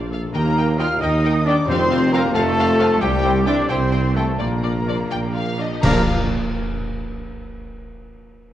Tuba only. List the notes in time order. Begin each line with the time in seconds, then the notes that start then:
Already playing: A#1
0.34 D#2
1.01 D#2
1.68 F1
2.35 F1
3.03 C2
3.71 C2
4.41 A#1
5.12 A#1
5.83 A#1